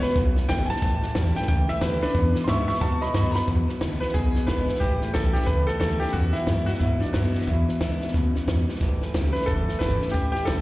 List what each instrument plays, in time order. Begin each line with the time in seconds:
Already playing: steel-string acoustic guitar B2 D#3 A3 B3 F#4
0.02 clean electric guitar B2 F#3, upright piano B4, muted upright bass stroke, snare
0.09 snare
0.16 upright bass B1, steel-string acoustic guitar F#2, clean electric guitar B2 F#3, kick, snare
0.36 clean electric guitar B2 F#3, muted upright bass stroke, snare
0.48 upright bass G#1, clean electric guitar B2 F#3, steel-string acoustic guitar D#3 A3 B3 F#4, upright piano G5, kick, snare, hi-hat pedal
0.66 clean electric guitar B2 F#3, steel-string acoustic guitar F#4, upright piano G#5, snare
0.70 steel-string acoustic guitar B3, upright piano A5, muted upright bass stroke
0.76 snare
0.82 upright bass A1, clean electric guitar A2 E3, steel-string acoustic guitar A2, kick, snare
1.02 clean electric guitar A2 E3, muted upright bass stroke, snare
1.15 upright bass E2, clean electric guitar A2 F#3, steel-string acoustic guitar E3 G3 C#4 E4, kick, snare, hi-hat pedal
1.36 clean electric guitar A2 E3, steel-string acoustic guitar C#4 E4, upright piano G5, muted upright bass stroke, snare
1.42 snare
1.48 upright bass C#2, steel-string acoustic guitar E2, clean electric guitar A2 E3, upright piano G5, kick, snare
1.68 clean electric guitar A2 E3, upright piano E5, muted upright bass stroke, snare
1.81 upright bass D2, clean electric guitar A2 E3, steel-string acoustic guitar E3 G3 C#4 E4, upright piano B4, kick, snare, hi-hat pedal
2.01 clean electric guitar A2 E3, steel-string acoustic guitar C#4 E4, upright piano D4 B4, muted upright bass stroke, snare
2.08 snare
2.15 steel-string acoustic guitar E2, clean electric guitar E2 B2, upright bass E2, kick, snare
2.35 clean electric guitar E2 B2, muted upright bass stroke, snare
2.44 upright bass G#2, steel-string acoustic guitar D3, upright piano C6, kick, snare, hi-hat pedal
2.48 clean electric guitar E2 C#3, steel-string acoustic guitar G#3 B3 E4, upright piano E5 C#6
2.68 clean electric guitar E2 B2, steel-string acoustic guitar B3 E4, upright piano E5 C#6, muted upright bass stroke, snare
2.75 snare
2.81 clean electric guitar B2 F#3, upright bass B2, steel-string acoustic guitar B2, upright piano A5 C#6, kick, snare
3.01 clean electric guitar B2 F#3, upright piano D#5 B5, muted upright bass stroke, snare
3.14 upright bass F#2, clean electric guitar B2 F#3, steel-string acoustic guitar D#3 A3 B3 F#4, upright piano D#5 B5, kick, snare, hi-hat pedal
3.31 steel-string acoustic guitar F#4, upright piano A#5, snare
3.35 clean electric guitar B2 F#3, steel-string acoustic guitar B3, upright piano B5, muted upright bass stroke
3.48 upright bass E2, steel-string acoustic guitar E2, clean electric guitar E2 B2, kick, snare
3.68 clean electric guitar E2 B2, muted upright bass stroke, snare
3.81 upright bass D2, clean electric guitar E2 C#3, steel-string acoustic guitar D3 G#3 B3 E4, kick, snare, hi-hat pedal
4.00 clean electric guitar E2 B2, steel-string acoustic guitar B3 E4, upright piano B4, muted upright bass stroke, snare
4.08 snare
4.14 upright bass B1, clean electric guitar E2 B2, steel-string acoustic guitar B2, upright piano G#4, kick, snare
4.35 clean electric guitar E2 B2, muted upright bass stroke, snare
4.47 upright bass G#1, clean electric guitar E2 B2, steel-string acoustic guitar D3 G#3 B3 E4, upright piano B4, kick, snare, hi-hat pedal
4.68 clean electric guitar E2 B2, steel-string acoustic guitar B3 E4, muted upright bass stroke, snare
4.75 snare
4.80 upright bass A1, clean electric guitar A2 E3, steel-string acoustic guitar A2, upright piano G4, kick, snare
5.01 clean electric guitar A2 E3, muted upright bass stroke, snare
5.14 upright bass B1, clean electric guitar A2 F#3, steel-string acoustic guitar E3 G3 C#4 E4, upright piano A4, kick, snare, hi-hat pedal
5.33 clean electric guitar A2 E3, steel-string acoustic guitar C#4 E4, upright piano G4, muted upright bass stroke, snare
5.41 snare
5.46 upright bass C#2, steel-string acoustic guitar E2, clean electric guitar A2 E3, upright piano B4, kick, snare
5.67 clean electric guitar A2 E3, upright piano A4, muted upright bass stroke, snare
5.80 upright bass D2, clean electric guitar A2 E3, steel-string acoustic guitar E3 G3 C#4 E4, upright piano A4, kick, snare, hi-hat pedal
6.00 clean electric guitar A2 E3, steel-string acoustic guitar C#4 E4, upright piano G4, muted upright bass stroke, snare
6.07 snare
6.13 upright bass E2, steel-string acoustic guitar E2, clean electric guitar E2 B2, upright piano F#4, kick, snare
6.33 clean electric guitar E2 B2, upright piano E4, muted upright bass stroke, snare
6.47 clean electric guitar E2 C#3, upright bass F#2, steel-string acoustic guitar D3 G#3 B3 E4, kick, snare, hi-hat pedal
6.66 clean electric guitar E2 B2, steel-string acoustic guitar B3 E4, upright piano F#4, muted upright bass stroke, snare
6.74 snare
6.79 clean electric guitar E2 B2, upright bass G#2, steel-string acoustic guitar B2, upright piano E4, kick, snare
7.00 clean electric guitar E2 B2, upright piano D4, muted upright bass stroke, snare
7.13 clean electric guitar E2 B2, upright bass F#2, steel-string acoustic guitar D3 G#3 B3 E4, upright piano F#4, kick, snare, hi-hat pedal
7.34 clean electric guitar E2 B2, steel-string acoustic guitar B3 E4, muted upright bass stroke, snare
7.41 snare
7.47 upright bass E2, clean electric guitar E2 B2, steel-string acoustic guitar E2, upright piano E4, kick, snare
7.68 clean electric guitar E2 B2, muted upright bass stroke, snare
7.80 upright bass C#2, clean electric guitar E2 C#3, steel-string acoustic guitar D3 G#3 B3 E4, kick, snare, hi-hat pedal
8.01 clean electric guitar E2 B2, steel-string acoustic guitar B3 E4, muted upright bass stroke, snare
8.08 snare
8.14 upright bass D2, clean electric guitar E2 B2, steel-string acoustic guitar F#2, kick, snare
8.35 clean electric guitar E2 B2, muted upright bass stroke, snare
8.48 clean electric guitar E2 B2, upright bass E2, steel-string acoustic guitar G#2, kick, snare, hi-hat pedal
8.68 clean electric guitar E2 B2, muted upright bass stroke, snare
8.75 snare
8.81 upright bass A1, clean electric guitar A2 E3, steel-string acoustic guitar A2, kick, snare
9.01 clean electric guitar A2 E3, muted upright bass stroke, snare
9.14 upright bass C#2, clean electric guitar A2 F#3, steel-string acoustic guitar E3 G3 C#4 E4, kick, snare, hi-hat pedal
9.33 clean electric guitar A2 E3, steel-string acoustic guitar E4, upright piano B4, muted upright bass stroke, snare
9.37 steel-string acoustic guitar C#4
9.42 snare
9.46 upright bass F#1, steel-string acoustic guitar E2, clean electric guitar A2 E3, upright piano A4, kick, snare
9.68 clean electric guitar A2 E3, muted upright bass stroke, snare
9.79 upright bass G1, clean electric guitar A2 E3, steel-string acoustic guitar E3 G3 C#4 E4, upright piano B4, kick, snare, hi-hat pedal
10.01 clean electric guitar A2 E3, steel-string acoustic guitar C#4 E4, muted upright bass stroke, snare
10.08 upright piano G4, snare
10.14 upright bass A1, steel-string acoustic guitar A2, clean electric guitar A2 E3, kick, snare
10.32 clean electric guitar A2 E3, upright piano G4, muted upright bass stroke, snare
10.45 upright bass B1, clean electric guitar A2 F#3, steel-string acoustic guitar E3 G3 C#4 E4, upright piano A4, kick, snare, hi-hat pedal